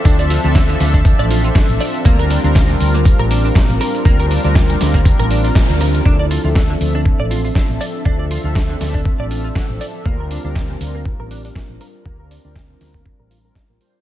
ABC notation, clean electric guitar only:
X:1
M:4/4
L:1/16
Q:"Swing 16ths" 1/4=120
K:Dm
V:1 name="Clean electric guitar"
D d F F D, D, z D z d F F D, z d z | B, B D D B,, B,, z B, z B D D B,, z B z | B, B D D B,, B,, z B, z B D D B,, z B z | D d F F D, D, z D z d F F D, z d z |
D d F F D, D, z D z d F F D, z d z | B, B D D B,, B,, z B, z B D D B,, z B z | B, B D D B,, B,, z B, z B F B D B, B, z |]